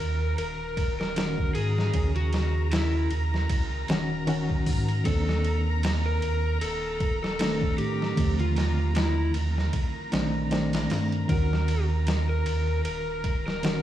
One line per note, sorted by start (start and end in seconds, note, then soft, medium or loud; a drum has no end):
0.00 0.34 D#2 medium
0.00 1.12 D#3 medium
0.00 1.12 C#4 medium
0.00 1.13 F#4 medium
0.00 0.33 A#4 medium
0.00 11.28 A#5 medium
0.38 1.52 D#1 loud
0.38 0.93 A#4 medium
0.38 ride medium
0.77 kick medium
0.77 ride medium
1.00 1.50 A#4 medium
1.00 snare soft
1.16 1.90 D#3 medium
1.16 1.90 C#4 medium
1.16 1.91 F#4 medium
1.16 snare loud
1.16 ride medium
1.38 kick medium
1.55 1.90 G#2 medium
1.55 2.09 G#4 loud
1.55 ride medium
1.78 snare soft
1.93 3.08 D#2 loud
1.93 3.84 C#3 medium
1.93 3.85 C#4 medium
1.93 3.86 G#4 medium
1.93 kick loud
1.93 ride medium
2.16 2.67 F#4 loud
2.16 ride soft
2.33 snare medium
2.33 ride medium
2.72 3.07 E4 medium
2.72 snare loud
2.72 ride medium
3.11 3.46 D#2 loud
3.11 ride medium
3.34 snare soft
3.49 3.85 C#2 loud
3.49 kick loud
3.49 ride medium
3.88 4.64 D#1 loud
3.88 4.24 D#3 loud
3.88 4.24 C#4 medium
3.88 4.24 F#4 loud
3.88 snare loud
3.88 ride medium
4.27 5.01 D#3 medium
4.27 5.02 C#4 medium
4.27 5.02 F#4 loud
4.27 ride medium
4.50 kick medium
4.66 5.02 G#2 medium
4.66 kick medium
4.66 open hi-hat medium
4.89 ride soft
5.04 6.19 D#2 loud
5.04 7.35 D#3 medium
5.04 7.35 A#3 medium
5.04 7.36 C4 medium
5.04 7.36 D4 medium
5.04 5.60 A4 loud
5.04 kick loud
5.04 ride medium
5.29 snare soft
5.44 ride medium
5.83 snare loud
5.83 ride medium
6.06 6.56 A#4 loud
6.22 6.58 D#2 loud
6.22 ride medium
6.61 7.75 D#1 loud
6.61 7.16 A4 medium
6.61 ride medium
7.00 kick medium
7.00 ride medium
7.23 7.73 A4 medium
7.23 snare soft
7.39 8.13 D#3 medium
7.39 8.13 A3 medium
7.39 8.13 C4 medium
7.39 8.14 D4 medium
7.39 snare loud
7.39 ride medium
7.61 kick medium
7.78 8.14 A2 medium
7.78 8.33 G4 loud
7.78 ride medium
8.02 snare soft
8.16 9.31 D#2 loud
8.16 10.07 D3 medium
8.16 10.09 F3 medium
8.16 10.08 A3 medium
8.16 10.08 C4 medium
8.16 kick loud
8.16 ride medium
8.39 8.90 F4 medium
8.39 ride soft
8.56 snare medium
8.56 ride medium
8.95 9.31 E4 medium
8.95 snare loud
8.95 ride medium
9.34 9.69 D#2 loud
9.34 ride medium
9.58 snare soft
9.73 kick loud
9.73 ride medium
10.12 10.87 A#1 medium
10.12 10.47 D#3 medium
10.12 10.47 A3 medium
10.12 10.47 C4 medium
10.12 10.48 D4 loud
10.12 snare loud
10.12 ride medium
10.51 11.25 D#3 medium
10.51 11.25 A3 medium
10.51 11.25 C4 medium
10.51 11.25 D4 loud
10.51 snare loud
10.51 ride medium
10.73 snare loud
10.73 ride medium
10.90 11.25 G2 medium
10.90 snare loud
10.90 ride medium
11.12 ride soft
11.28 12.43 D#2 loud
11.28 13.58 D#3 medium
11.28 13.59 C#4 medium
11.28 13.60 F#4 medium
11.28 11.84 A#4 loud
11.28 13.82 A#5 medium
11.28 kick loud
11.28 ride medium
11.53 snare soft
11.68 ride medium
12.07 snare loud
12.07 ride medium
12.29 12.80 A#4 medium
12.46 12.81 D#2 medium
12.46 ride medium
12.85 13.82 D#1 loud
12.85 13.39 A#4 medium
12.85 ride medium
13.24 kick medium
13.24 ride medium
13.47 13.82 A#4 loud
13.47 snare soft
13.62 13.82 D#3 medium
13.62 13.82 C#4 medium
13.62 13.82 F#4 medium
13.62 snare loud
13.62 ride medium